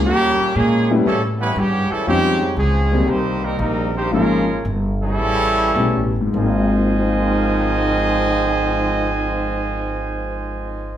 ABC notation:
X:1
M:4/4
L:1/8
Q:"Swing" 1/4=109
K:Ab
V:1 name="Trumpet section"
[B,DG]2 [B,DA]2 [G,^C=E=A] [G,CE=B] [=B,CG] [G,CEA] | [CDG]2 [CDA]2 [B,EGc] [G,CEB] [G,CEB] [B,EGc] | [A,DFB]2 z [G,D_F=A]4 z | [Fcea]8- |
[Fcea]8 |]
V:2 name="Grand piano"
z8 | z8 | z8 | z2 [Acfac'f'a']6- |
[Acfac'f'a']8 |]
V:3 name="Grand piano"
z3 [G,=A,_CD_F] z4 | [F,A,CDE] z2 [E,G,B,CE] z4 | [F,A,B,DE] z4 z [G,=A,=B,^C=E] z | [A,,A,B,CF]8- |
[A,,A,B,CF]8 |]
V:4 name="Trombone section" clef=bass
[B,,D,G,]2 [B,,D,A,]2 [^C,=E,=A,] [E,G,=B,] [C,E,G,] [C,E,A,] | [A,,D,G,]2 [D,F,A,]2 [E,G,C] [E,G,B,] [E,G,B,] [E,G,C] | [B,,D,B,]2 z [D,_F,=A,]4 z | [A,,E,F,C]8- |
[A,,E,F,C]8 |]
V:5 name="Upright bass" clef=bass
E,, z B,,2 =A,,2 G,, z | F,,2 D,,2 C,,2 B,,,2 | A,,,2 G,,,2 =A,,,2 (3=B,,, A,,, G,,, | A,,,8- |
A,,,8 |]